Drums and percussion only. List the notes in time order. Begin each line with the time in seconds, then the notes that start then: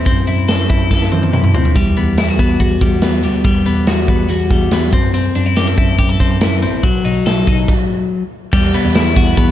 0.06 kick, closed hi-hat
0.27 closed hi-hat
0.49 snare, closed hi-hat
0.70 kick, closed hi-hat
0.91 kick, snare
1.02 snare
1.12 high tom
1.23 high tom
1.33 mid tom
1.44 mid tom
1.55 floor tom
1.65 floor tom
1.76 kick, closed hi-hat
1.97 closed hi-hat
2.18 snare, closed hi-hat
2.39 kick, closed hi-hat
2.60 kick, closed hi-hat
2.81 kick, closed hi-hat
3.02 snare, closed hi-hat
3.23 closed hi-hat
3.44 kick, closed hi-hat
3.66 closed hi-hat
3.87 snare, closed hi-hat
4.08 kick, closed hi-hat
4.29 closed hi-hat
4.50 kick, closed hi-hat
4.71 snare, closed hi-hat
4.92 kick, closed hi-hat
5.14 closed hi-hat
5.35 closed hi-hat
5.56 snare, closed hi-hat
5.78 kick, closed hi-hat
5.99 kick, closed hi-hat
6.20 kick, closed hi-hat
6.41 snare, closed hi-hat
6.62 closed hi-hat
6.84 kick, closed hi-hat
7.05 closed hi-hat
7.26 snare, closed hi-hat
7.47 kick, closed hi-hat
7.68 kick, crash
8.53 kick, crash
8.74 hi-hat pedal, open hi-hat
8.95 snare, hi-hat pedal, open hi-hat
9.16 kick, hi-hat pedal, open hi-hat
9.37 kick, hi-hat pedal, open hi-hat